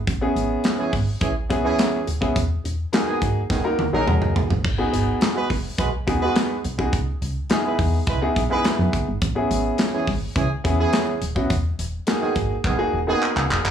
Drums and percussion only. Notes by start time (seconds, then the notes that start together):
0.07 kick, closed hi-hat
0.36 closed hi-hat
0.64 snare, clap, closed hi-hat
0.93 kick, open hi-hat
1.21 kick, closed hi-hat
1.50 kick, closed hi-hat
1.79 snare, clap, closed hi-hat
2.07 closed hi-hat
2.22 kick
2.36 kick, closed hi-hat
2.65 closed hi-hat
2.93 snare, clap, closed hi-hat
3.22 kick, closed hi-hat
3.50 kick, snare
3.79 high tom
4.07 mid tom
4.22 mid tom
4.36 floor tom
4.50 floor tom
4.64 kick, crash
4.94 closed hi-hat
5.21 snare, clap, closed hi-hat
5.50 kick, open hi-hat
5.78 kick, closed hi-hat
6.08 kick, closed hi-hat
6.36 snare, clap, closed hi-hat
6.64 closed hi-hat
6.79 kick
6.93 kick, closed hi-hat
7.22 closed hi-hat
7.50 snare, clap, closed hi-hat
7.79 kick, open hi-hat
8.07 kick, closed hi-hat
8.36 kick, closed hi-hat
8.65 snare, clap, closed hi-hat
8.93 kick, closed hi-hat
9.22 kick, closed hi-hat
9.51 closed hi-hat
9.78 snare, clap, closed hi-hat
10.07 kick, open hi-hat
10.36 kick, closed hi-hat
10.65 kick, closed hi-hat
10.93 snare, clap, closed hi-hat
11.22 closed hi-hat
11.36 kick
11.50 kick, closed hi-hat
11.79 closed hi-hat
12.07 snare, clap, closed hi-hat
12.36 kick, closed hi-hat
12.64 kick, clap
13.22 clap
13.37 clap
13.51 clap
13.65 clap